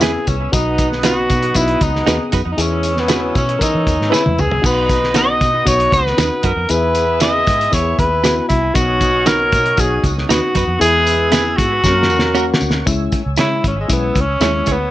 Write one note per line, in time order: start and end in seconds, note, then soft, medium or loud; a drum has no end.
0.00 0.16 E2 medium
0.00 0.24 E3 medium
0.00 0.24 G#3 medium
0.00 0.24 B3 medium
0.00 8.72 B3 medium
0.00 0.35 B3 medium
0.00 0.35 E4 medium
0.00 0.11 E4 medium
0.00 0.24 G#4 medium
0.00 0.35 G#4 medium
0.00 0.30 G#4 medium
0.00 0.11 G#4 medium
0.00 0.12 B4 medium
0.00 0.51 G#5 medium
0.00 0.51 E6 medium
0.00 snare loud
0.00 closed hi-hat medium
0.00 tambourine medium
0.27 0.48 C2 medium
0.27 0.55 C#4 medium
0.27 kick medium
0.27 closed hi-hat medium
0.27 tambourine medium
0.52 1.26 B1 medium
0.52 2.29 F#3 medium
0.52 0.87 B3 medium
0.52 2.29 B3 medium
0.52 0.87 D#4 medium
0.52 2.29 D#4 medium
0.52 0.89 D#4 loud
0.52 0.87 F#4 medium
0.52 2.29 B4 medium
0.52 2.58 F#5 medium
0.52 2.58 D#6 medium
0.52 kick loud
0.52 closed hi-hat medium
0.52 tambourine medium
0.78 kick medium
0.78 closed hi-hat medium
0.78 tambourine medium
0.92 snare soft
1.03 1.38 B3 medium
1.03 1.13 D#4 medium
1.03 1.38 D#4 medium
1.03 1.38 F#4 medium
1.03 1.58 F#4 medium
1.03 1.14 F#4 medium
1.03 1.14 B4 medium
1.03 snare loud
1.03 closed hi-hat medium
1.03 tambourine medium
1.30 1.51 B2 medium
1.30 kick medium
1.30 closed hi-hat medium
1.30 tambourine soft
1.43 closed hi-hat soft
1.55 1.76 B1 medium
1.55 1.90 B3 medium
1.55 1.89 D#4 medium
1.55 1.84 E4 medium
1.55 1.90 F#4 medium
1.55 kick medium
1.55 closed hi-hat medium
1.55 tambourine loud
1.68 closed hi-hat soft
1.81 2.02 C#2 medium
1.81 2.32 D#4 medium
1.81 kick medium
1.81 closed hi-hat medium
1.81 tambourine soft
1.96 snare soft
2.06 2.18 D#2 medium
2.06 2.41 B3 medium
2.06 2.41 D#4 medium
2.06 2.16 D#4 medium
2.06 2.17 F#4 medium
2.06 2.41 G#4 medium
2.06 2.17 B4 medium
2.06 snare loud
2.06 closed hi-hat medium
2.06 tambourine medium
2.32 2.43 F#2 medium
2.32 2.40 D#4 medium
2.32 2.40 F#4 medium
2.32 2.41 B4 medium
2.32 kick medium
2.32 closed hi-hat medium
2.32 tambourine medium
2.46 2.56 F2 medium
2.52 2.63 D#4 medium
2.57 3.32 E2 medium
2.57 4.35 E3 medium
2.57 4.35 G#3 medium
2.57 2.92 B3 medium
2.57 4.35 C#4 medium
2.57 2.92 E4 medium
2.57 2.92 G#4 medium
2.57 4.35 C#5 medium
2.57 4.63 G#5 medium
2.57 4.63 E6 medium
2.57 closed hi-hat medium
2.57 tambourine medium
2.62 3.01 C#4 loud
2.83 closed hi-hat medium
2.83 tambourine medium
2.97 3.37 B3 medium
2.97 snare soft
3.08 3.43 B3 medium
3.08 3.43 E4 medium
3.08 3.19 E4 medium
3.08 3.43 F#4 medium
3.08 3.20 G#4 medium
3.08 3.20 B4 medium
3.08 snare loud
3.08 closed hi-hat medium
3.08 tambourine medium
3.35 3.56 B2 medium
3.35 3.64 C#4 medium
3.35 kick loud
3.35 closed hi-hat medium
3.35 tambourine soft
3.49 closed hi-hat soft
3.59 3.94 E3 medium
3.59 3.95 B3 medium
3.59 4.16 D#4 loud
3.59 3.94 A#4 medium
3.59 kick medium
3.59 closed hi-hat medium
3.59 tambourine loud
3.75 3.85 E3 medium
3.87 3.97 E2 medium
3.87 kick medium
3.87 closed hi-hat medium
3.87 tambourine soft
4.00 4.10 G#2 medium
4.00 snare soft
4.10 4.46 B3 medium
4.10 4.46 E4 medium
4.10 4.22 E4 medium
4.10 4.22 G#4 medium
4.10 4.46 B4 medium
4.10 4.23 B4 loud
4.10 tambourine loud
4.14 4.42 E4 medium
4.14 snare medium
4.26 4.37 E2 medium
4.26 high tom medium
4.38 4.50 C#2 medium
4.38 4.67 G#4 medium
4.38 mid tom medium
4.38 tambourine medium
4.51 4.62 C2 medium
4.51 floor tom medium
4.62 5.37 B1 medium
4.62 4.97 B3 medium
4.62 6.41 B3 medium
4.62 4.97 D#4 medium
4.62 6.41 D#4 medium
4.62 4.97 F#4 medium
4.62 6.41 F#4 medium
4.62 5.16 B4 loud
4.62 6.41 D#5 medium
4.62 6.67 F#5 medium
4.62 6.67 D#6 medium
4.62 kick loud
4.62 crash medium
4.66 tambourine medium
4.89 kick medium
4.89 closed hi-hat medium
4.89 tambourine medium
5.04 snare soft
5.14 5.49 B3 medium
5.14 5.49 D#4 medium
5.14 5.25 D#4 medium
5.14 5.49 F#4 medium
5.14 5.25 F#4 medium
5.14 5.25 B4 medium
5.14 5.69 D#5 loud
5.14 snare loud
5.14 closed hi-hat medium
5.14 tambourine medium
5.41 5.61 B2 medium
5.41 kick medium
5.41 closed hi-hat medium
5.41 tambourine soft
5.65 5.87 B1 medium
5.65 6.00 B3 medium
5.65 6.00 D#4 medium
5.65 6.00 F#4 medium
5.65 5.93 C#5 loud
5.65 kick medium
5.65 closed hi-hat medium
5.65 tambourine loud
5.80 closed hi-hat soft
5.92 6.13 C#2 medium
5.92 6.47 B4 loud
5.92 kick medium
5.92 closed hi-hat medium
5.92 tambourine soft
6.07 snare soft
6.17 6.29 D#2 medium
6.17 6.52 B3 medium
6.17 6.52 D#4 medium
6.17 6.28 D#4 medium
6.17 6.52 F#4 medium
6.17 6.28 F#4 medium
6.17 6.28 B4 loud
6.17 snare loud
6.17 closed hi-hat medium
6.17 tambourine loud
6.43 6.54 F#2 medium
6.43 6.51 D#4 medium
6.43 6.52 F#4 medium
6.43 6.71 A#4 medium
6.43 6.52 B4 medium
6.43 kick medium
6.43 closed hi-hat medium
6.43 tambourine medium
6.56 6.67 F2 medium
6.69 7.43 E2 loud
6.69 7.04 B3 medium
6.69 8.46 B3 medium
6.69 7.04 E4 medium
6.69 8.46 E4 medium
6.69 7.04 G#4 medium
6.69 8.46 G#4 medium
6.69 7.21 B4 loud
6.69 8.46 E5 medium
6.69 8.73 G#5 medium
6.69 closed hi-hat medium
6.69 tambourine medium
6.95 closed hi-hat medium
6.95 tambourine medium
7.20 7.55 B3 medium
7.20 7.55 E4 medium
7.20 7.31 E4 medium
7.20 7.55 G#4 medium
7.20 7.31 G#4 medium
7.20 7.32 B4 medium
7.20 7.75 D#5 loud
7.20 snare loud
7.20 closed hi-hat medium
7.20 tambourine medium
7.47 7.68 G#2 medium
7.47 kick loud
7.47 closed hi-hat medium
7.47 tambourine medium
7.61 closed hi-hat soft
7.72 7.93 E2 medium
7.72 8.06 B3 medium
7.72 8.06 E4 medium
7.72 8.07 G#4 medium
7.72 7.99 C#5 loud
7.72 kick medium
7.72 closed hi-hat medium
7.72 tambourine medium
7.98 8.39 D#2 medium
7.98 8.47 B4 loud
7.98 kick medium
7.98 closed hi-hat medium
7.98 tambourine soft
8.24 8.58 B3 medium
8.24 8.33 E4 medium
8.24 8.58 E4 medium
8.24 8.58 F#4 medium
8.24 8.34 G#4 medium
8.24 8.34 B4 loud
8.24 snare loud
8.24 closed hi-hat medium
8.24 tambourine loud
8.48 8.71 C2 medium
8.48 8.76 E4 medium
8.48 kick medium
8.48 closed hi-hat medium
8.48 tambourine medium
8.74 9.54 B1 medium
8.74 10.52 F#3 medium
8.74 9.09 B3 medium
8.74 11.81 B3 medium
8.74 10.52 C#4 medium
8.74 9.09 D#4 medium
8.74 10.52 D#4 medium
8.74 9.09 F#4 medium
8.74 9.28 F#4 loud
8.74 10.52 C#5 loud
8.74 10.79 F#5 medium
8.74 10.79 D#6 medium
8.74 kick loud
8.74 closed hi-hat medium
8.74 tambourine medium
9.01 kick medium
9.01 closed hi-hat medium
9.01 tambourine medium
9.26 9.61 B3 medium
9.26 9.60 D#4 medium
9.26 9.36 D#4 medium
9.26 9.61 F#4 medium
9.26 9.36 F#4 loud
9.26 9.81 A#4 medium
9.26 9.37 B4 loud
9.26 snare loud
9.26 closed hi-hat medium
9.26 tambourine medium
9.52 9.73 B2 medium
9.52 kick medium
9.52 closed hi-hat medium
9.52 tambourine medium
9.66 closed hi-hat soft
9.77 9.98 B1 medium
9.77 10.12 B3 medium
9.77 10.12 D#4 medium
9.77 10.12 F#4 medium
9.77 10.05 G#4 medium
9.77 kick medium
9.77 closed hi-hat medium
9.77 tambourine loud
10.04 10.24 C#2 medium
10.04 kick medium
10.04 closed hi-hat medium
10.04 tambourine medium
10.18 snare soft
10.29 10.40 D#2 medium
10.29 10.64 B3 medium
10.29 10.39 D#4 medium
10.29 10.64 D#4 medium
10.29 10.64 F#4 medium
10.29 10.39 F#4 medium
10.29 10.79 F#4 medium
10.29 10.40 B4 loud
10.29 snare loud
10.29 closed hi-hat medium
10.29 tambourine loud
10.55 10.65 F#2 medium
10.55 10.62 D#4 medium
10.55 10.63 F#4 medium
10.55 10.64 B4 medium
10.55 kick medium
10.55 closed hi-hat medium
10.55 tambourine medium
10.68 10.78 F2 medium
10.79 11.55 E2 loud
10.79 11.57 G#3 medium
10.79 11.15 B3 medium
10.79 11.57 B3 medium
10.79 11.15 E4 medium
10.79 11.57 E4 medium
10.79 11.15 G#4 medium
10.79 11.29 G#4 loud
10.79 11.57 B4 medium
10.79 11.82 G#5 medium
10.79 11.82 E6 medium
10.79 closed hi-hat medium
10.79 tambourine medium
11.07 closed hi-hat medium
11.07 tambourine medium
11.31 11.66 B3 medium
11.31 11.66 E4 medium
11.31 11.42 E4 medium
11.31 11.66 G#4 medium
11.31 11.59 G#4 loud
11.31 11.42 G#4 loud
11.31 11.43 B4 loud
11.31 snare loud
11.31 closed hi-hat medium
11.31 tambourine medium
11.57 11.78 G#2 medium
11.57 12.61 F#4 loud
11.57 kick loud
11.57 closed hi-hat medium
11.57 tambourine medium
11.83 12.10 F#2 loud
11.83 12.60 F#3 medium
11.83 12.60 A#3 medium
11.83 12.18 A#3 medium
11.83 12.60 C#4 medium
11.83 12.18 C#4 medium
11.83 12.18 F#4 medium
11.83 12.60 A#4 medium
11.83 12.86 A#4 medium
11.83 12.86 F#5 medium
11.83 12.86 C#6 medium
11.83 kick medium
11.83 snare medium
11.83 tambourine loud
12.03 snare medium
12.10 12.51 E2 medium
12.10 tambourine soft
12.19 snare medium
12.35 12.69 A#3 medium
12.35 12.44 C#4 medium
12.35 12.69 C#4 medium
12.35 12.69 F#4 loud
12.35 12.45 F#4 medium
12.35 12.46 A#4 medium
12.35 tambourine loud
12.54 snare loud
12.61 12.82 D2 loud
12.61 tambourine medium
12.71 snare medium
12.86 13.07 C#2 medium
12.86 13.21 G#3 medium
12.86 13.21 C#4 medium
12.86 13.21 E4 loud
12.86 14.91 C#5 medium
12.86 14.91 G#5 medium
12.86 14.91 E6 medium
12.86 kick loud
12.86 closed hi-hat medium
12.86 tambourine medium
13.12 kick medium
13.12 closed hi-hat medium
13.12 tambourine medium
13.26 13.36 C#2 medium
13.36 13.59 C#3 medium
13.36 13.72 G#3 medium
13.36 13.72 C#4 medium
13.36 13.47 E4 medium
13.36 13.72 E4 medium
13.36 13.63 E4 loud
13.36 13.48 G#4 medium
13.36 13.48 C#5 medium
13.36 snare loud
13.36 closed hi-hat medium
13.36 tambourine medium
13.64 13.84 G#1 medium
13.64 13.78 C#4 medium
13.64 kick medium
13.64 closed hi-hat medium
13.64 tambourine medium
13.80 13.91 G#3 medium
13.88 14.10 B1 medium
13.88 14.23 G#3 medium
13.88 14.23 C#4 medium
13.88 14.23 E4 medium
13.88 kick medium
13.88 closed hi-hat medium
13.88 tambourine loud
13.93 14.22 B3 medium
14.15 14.36 C#2 medium
14.15 kick medium
14.15 closed hi-hat medium
14.15 tambourine soft
14.21 14.73 C#4 loud
14.40 14.61 D#2 medium
14.40 14.75 G#3 medium
14.40 14.75 C#4 medium
14.40 14.75 E4 medium
14.40 14.51 E4 medium
14.40 14.51 G#4 medium
14.40 14.52 C#5 loud
14.40 snare loud
14.40 closed hi-hat medium
14.40 tambourine loud
14.66 14.87 D2 medium
14.66 14.74 E4 medium
14.66 14.75 G#4 medium
14.66 14.75 C#5 medium
14.66 kick medium
14.66 closed hi-hat medium
14.66 tambourine medium
14.72 14.91 B3 medium